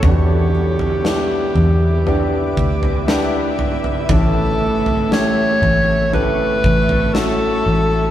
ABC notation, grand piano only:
X:1
M:4/4
L:1/8
Q:1/4=59
K:Edor
V:1 name="Grand piano"
[B,DEG]2 [B,DEG]2 [B,DEG]2 [B,DEG]2 | [A,CEG]2 [A,CEG]2 [A,CEG]2 [A,CEF]2 |]
V:2 name="Grand piano" clef=bass
B,,3 z4 z | [A,,E,]3 z4 z |]